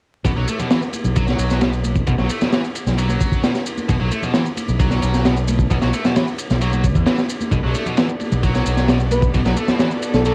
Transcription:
0.25 B1 B2, kick, ride, shaker
0.37 B1 F#3
0.48 A3, ride, shaker
0.59 B2, ride, low conga, shaker
0.71 E3, snare, ride, shaker
0.82 shaker
0.93 ride, high conga, shaker
1.04 B1, low conga, shaker
1.16 F#3, kick, ride, shaker
1.28 F#3, snare, shaker
1.39 B1, ride, shaker
1.50 snare, shaker
1.61 B2, snare, ride, shaker
1.73 shaker
1.84 ride, high conga, shaker
1.96 kick, shaker
2.07 B1 B2, kick, ride, shaker
2.18 B1 F#3, snare, shaker
2.30 A3, ride, shaker
2.41 B2, snare, low conga, shaker
2.52 E3, snare, ride, shaker
2.64 shaker
2.75 ride, shaker
2.86 B1, snare, low conga, shaker
2.98 F#3, ride, shaker
3.09 F#3, high conga, shaker
3.21 kick, ride, shaker
3.32 kick, shaker
3.43 B2, snare, ride, shaker
3.55 snare, shaker
3.66 ride, shaker
3.78 high conga, shaker
3.89 B1 B2, kick, ride, shaker
4.00 B1 F#3
4.12 A3, ride, shaker
4.22 B2, ride, low conga, shaker
4.34 E3, snare, ride, shaker
4.46 shaker
4.57 ride, high conga, shaker
4.68 B1, low conga, shaker
4.80 F#3, kick, ride, shaker
4.91 F#3, snare, shaker
5.02 B1, ride, shaker
5.14 snare, shaker
5.25 B2, snare, ride, shaker
5.37 shaker
5.48 ride, high conga, shaker
5.59 kick, shaker
5.71 B1 B2, kick, ride, shaker
5.82 B1 F#3, snare, shaker
5.93 A3, ride, shaker
6.05 B2, snare, low conga, shaker
6.16 E3, snare, ride, shaker
6.28 shaker
6.38 ride, shaker
6.50 B1, snare, low conga, shaker
6.61 F#3, ride, shaker
6.73 F#3, high conga, shaker
6.84 kick, ride, shaker
6.95 E2, kick, shaker
7.06 E3, snare, ride, shaker
7.18 snare, shaker
7.29 ride, shaker
7.41 high conga, shaker
7.51 B1 B2 B3 F#4 A4 D5, kick, ride, shaker
7.64 B1 F#3
7.75 A3, ride, muted conga, shaker
7.86 B2, ride, low conga, shaker
7.97 E3, snare, ride, shaker
8.09 shaker
8.19 ride, high conga, shaker
8.32 B1, muted conga, low conga, shaker
8.43 F#3, kick, ride, shaker
8.55 F#3, snare, shaker
8.66 B1, ride, shaker
8.77 snare, shaker
8.88 B2, snare, ride, shaker
9.00 shaker
9.11 B4, ride, high conga, shaker
9.22 kick, shaker
9.34 B1 B2, kick, ride, shaker
9.46 B1 F#3, snare, shaker
9.57 A3, ride, muted conga, shaker
9.68 B2, snare, low conga, shaker
9.79 E3, snare, ride, shaker
9.91 shaker
10.02 ride, shaker
10.14 B1 A4, snare, muted conga, low conga, shaker
10.25 F#3 A4, ride, shaker

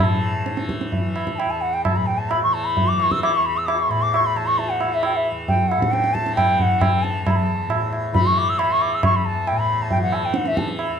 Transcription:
Already playing: E2 E3
0.00 A2 A5
0.46 E3, tabla te
0.57 tabla te
0.69 tabla ke
0.81 tabla te
0.92 tabla tin, tabla ge
0.96 E3
1.16 tabla na
1.27 tabla ke
1.35 G5 A5
1.40 tabla na
1.46 E2
1.50 A5
1.61 F#5
1.73 G5
1.84 A5, tabla na, tabla ge
1.96 A2 B5
2.06 G5
2.18 A5
2.30 B5, tabla na
2.43 E3 C#6
2.54 A5
2.65 B5
2.77 tabla tin, tabla ge
2.88 D6
2.93 E3
2.99 C#6, tabla na
3.11 E6, tabla ke
3.23 D6, tabla na
3.34 C#6
3.40 E2 C#6
3.46 B5
3.57 E6
3.66 D6, tabla na
3.79 C#6
3.89 A2 B5, tabla na
4.02 D6
4.13 C#6, tabla na
4.26 B5
4.35 E3 A5, tabla na
4.46 C#6
4.58 A5, tabla tin
4.70 F#5
4.81 E3, tabla na
4.94 E5
5.03 G5, tabla na
5.16 E5
5.31 E2
5.48 G5, tabla tin, tabla ge
5.69 F#5, tabla na
5.77 A2
5.82 tabla ke
5.92 G5, tabla te
6.04 tabla te
6.14 A5, tabla ke
6.23 E3, tabla te
6.36 G5, tabla na, tabla ge
6.58 F#5 G5, tabla ge
6.70 E3
6.81 G5, tabla na, tabla ge
7.03 A5, tabla te
7.19 E2
7.25 A5, tabla na, tabla ge
7.30 B5
7.36 A5
7.66 A2, tabla na
7.93 tabla na
8.12 E3 B5, tabla tin, tabla ge
8.26 C#6
8.37 D6, tabla na
8.49 E6
8.57 E3 B5, tabla na
8.72 C#6
8.81 D6, tabla na
8.94 E6
9.03 E2 C#6, tabla na, tabla ge
9.16 B5
9.25 A5
9.47 A2 G5, tabla na
9.58 B5
9.82 A5
9.90 G5, tabla tin, tabla ge
9.98 E3
10.03 F#5
10.12 A5, tabla na
10.25 G5
10.34 F#5, tabla te
10.44 E3 E5, tabla te
10.57 A5, tabla ke
10.68 tabla te
10.79 tabla na
10.89 E2

